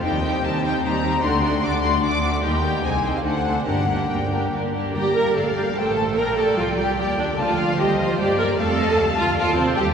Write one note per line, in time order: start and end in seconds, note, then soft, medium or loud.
0.03 0.39 D#2 medium
0.03 0.23 G3 medium
0.03 1.21 C4 medium
0.03 1.21 D#4 soft
0.03 0.23 D#4 medium
0.03 0.22 G4 medium
0.03 0.22 C5 soft
0.03 0.43 G5 medium
0.23 0.43 G3 medium
0.23 0.42 D#4 medium
0.23 0.42 G4 soft
0.23 0.42 C5 medium
0.43 0.79 D#2 medium
0.43 0.79 D#2 soft
0.43 0.63 G3 soft
0.43 0.63 D#4 medium
0.43 0.62 G4 soft
0.43 0.62 C5 soft
0.43 0.64 A5 medium
0.63 0.84 G3 soft
0.63 0.84 D#4 soft
0.63 0.82 G4 medium
0.63 0.82 C5 medium
0.63 0.84 G5 medium
0.83 1.19 D#2 medium
0.83 1.04 G3 medium
0.83 1.04 D#4 medium
0.83 1.01 G4 soft
0.83 1.02 C5 soft
0.83 1.23 A#5 medium
1.03 1.24 G3 soft
1.03 1.24 D#4 medium
1.03 1.23 G4 soft
1.03 1.23 C5 soft
1.22 1.59 D2 medium
1.22 2.43 A3 medium
1.22 1.42 A3 medium
1.22 2.43 D4 medium
1.22 1.42 D4 medium
1.22 1.41 F#4 medium
1.22 1.40 D5 medium
1.22 1.63 C6 medium
1.42 1.62 A3 medium
1.42 1.62 D4 soft
1.42 1.61 F#4 medium
1.42 1.61 D5 soft
1.63 1.99 D2 medium
1.63 1.82 A3 soft
1.63 1.81 D4 soft
1.63 1.82 F#4 soft
1.63 1.82 D5 medium
1.63 1.84 D6 medium
1.82 2.02 A3 soft
1.82 2.02 D4 medium
1.82 2.01 F#4 medium
1.82 2.01 D5 medium
1.82 2.02 C6 medium
2.02 2.39 D2 medium
2.02 2.22 A3 medium
2.02 2.22 D4 soft
2.02 2.22 F#4 medium
2.02 2.22 D5 soft
2.02 2.43 D6 medium
2.23 2.43 A3 soft
2.23 2.43 D4 soft
2.23 2.43 F#4 soft
2.23 2.43 D5 soft
2.43 2.79 D#2 medium
2.43 2.80 D#2 medium
2.43 2.63 G3 medium
2.43 2.82 A#3 medium
2.43 2.63 D#4 medium
2.43 2.81 D#4 soft
2.43 2.63 G4 medium
2.43 2.63 A#4 medium
2.43 2.84 G5 medium
2.64 2.84 G3 soft
2.64 2.83 D#4 soft
2.64 2.84 G4 soft
2.64 2.84 A#4 soft
2.83 3.21 C2 medium
2.83 3.21 C2 soft
2.83 3.24 C4 soft
2.83 3.04 C4 soft
2.83 3.25 D#4 soft
2.83 3.03 D#4 soft
2.83 3.01 G#4 soft
2.83 3.02 C5 soft
2.83 3.06 G#5 medium
3.03 3.25 C4 soft
3.03 3.25 D#4 soft
3.03 3.24 G#4 soft
3.03 3.22 C5 soft
3.07 3.16 G5 medium
3.16 3.20 F5 medium
3.23 3.63 D2 medium
3.23 3.63 D2 soft
3.23 3.46 A3 soft
3.23 3.54 C4 soft
3.23 3.55 D4 soft
3.23 3.45 D4 soft
3.23 3.44 A4 soft
3.23 3.44 C5 soft
3.23 3.65 F#5 medium
3.45 3.68 A3 soft
3.45 3.67 D4 soft
3.45 3.67 A4 soft
3.45 3.67 C5 soft
3.66 4.05 G1 medium
3.66 4.28 G2 medium
3.66 4.06 G2 soft
3.66 4.08 A#3 soft
3.66 3.89 A#3 soft
3.66 4.08 D4 soft
3.66 3.89 D4 soft
3.66 3.88 G4 soft
3.66 3.88 A#4 soft
3.66 4.09 F#5 medium
3.89 4.09 A#3 soft
3.89 4.10 D4 soft
3.89 4.09 G4 soft
3.89 4.09 A#4 soft
4.09 4.48 G1 soft
4.09 4.48 G2 soft
4.09 4.72 A#3 soft
4.09 4.31 A#3 soft
4.09 4.72 D4 soft
4.09 4.31 D4 soft
4.09 4.31 G4 soft
4.09 4.30 A#4 soft
4.09 4.52 G5 medium
4.32 4.52 A#3 soft
4.32 4.52 D4 soft
4.32 4.52 G4 soft
4.32 4.52 A#4 soft
4.53 4.90 G1 soft
4.53 4.90 G2 soft
4.53 4.73 A#3 soft
4.53 4.74 D4 soft
4.53 4.72 G4 soft
4.53 4.73 A#4 soft
4.73 4.95 A#3 soft
4.73 4.95 D4 soft
4.73 4.94 G4 soft
4.73 4.94 A#4 soft
4.94 5.33 G1 medium
4.94 5.52 G2 medium
4.94 5.03 G3 medium
4.94 5.14 G4 medium
4.94 5.73 D5 soft
4.94 5.14 G5 medium
4.94 5.34 A#5 soft
5.16 5.36 A#3 soft
5.16 5.36 A#4 medium
5.16 5.36 A#5 medium
5.35 5.77 A#1 soft
5.35 5.56 A3 medium
5.35 5.44 A4 medium
5.35 5.76 F5 soft
5.35 5.56 A5 medium
5.55 5.77 G3 medium
5.55 5.65 G4 medium
5.55 5.76 G5 medium
5.75 6.17 A1 medium
5.75 6.17 A3 medium
5.75 6.16 A4 medium
5.75 6.17 C5 soft
5.75 5.97 G5 medium
5.75 6.16 A5 medium
5.96 6.04 A5 soft
6.16 6.58 A#1 medium
6.16 6.37 A#3 medium
6.16 6.37 A#4 medium
6.16 7.36 D5 medium
6.16 6.96 G5 soft
6.16 6.37 A#5 medium
6.37 6.57 A3 medium
6.37 6.57 A4 medium
6.37 6.57 A5 medium
6.57 6.98 C2 soft
6.57 6.78 F3 medium
6.57 6.78 F4 medium
6.57 6.66 F5 medium
6.77 6.96 G3 medium
6.77 6.97 G4 medium
6.77 6.97 G5 medium
6.98 7.38 D#2 medium
6.98 7.17 G3 medium
6.98 7.18 G4 medium
6.98 7.37 G5 soft
6.98 7.18 G5 medium
7.18 7.26 D3 medium
7.18 7.26 D4 medium
7.18 7.38 D5 medium
7.37 7.77 D2 medium
7.37 7.94 D3 medium
7.37 7.77 F3 medium
7.37 7.77 F4 medium
7.37 7.77 D5 medium
7.37 7.78 F5 medium
7.37 7.57 A5 medium
7.59 7.78 F5 medium
7.77 8.17 D#2 medium
7.77 7.98 G3 medium
7.77 7.98 G4 medium
7.77 8.58 C5 medium
7.77 8.18 D#5 medium
7.77 7.98 G5 medium
7.98 8.18 F3 medium
7.98 8.18 F4 medium
7.98 8.18 F5 medium
8.18 8.57 G2 medium
8.18 8.26 G3 medium
8.18 8.38 G4 medium
8.18 8.56 D5 medium
8.18 8.38 G5 medium
8.37 8.57 A#3 medium
8.37 8.47 A#4 medium
8.37 8.58 A#5 medium
8.58 8.97 F2 medium
8.58 9.16 A3 medium
8.58 9.16 A4 medium
8.58 8.77 D5 medium
8.58 8.97 F5 medium
8.58 9.17 A5 medium
8.78 8.98 D#5 medium
8.97 9.37 D2 medium
8.97 9.38 F5 medium
8.97 9.38 A5 medium
9.16 9.36 F3 medium
9.16 9.37 F4 medium
9.16 9.37 F5 medium
9.37 9.75 D#2 medium
9.37 9.57 F3 medium
9.37 9.57 F4 medium
9.37 9.78 D5 medium
9.37 9.58 F5 medium
9.37 9.77 A5 medium
9.55 9.77 C3 medium
9.55 9.77 C4 medium
9.55 9.63 C5 medium
9.76 9.94 D#2 medium
9.76 9.84 G3 medium
9.76 9.94 G4 medium
9.76 9.85 C5 medium
9.76 9.84 G5 medium
9.76 9.86 G5 medium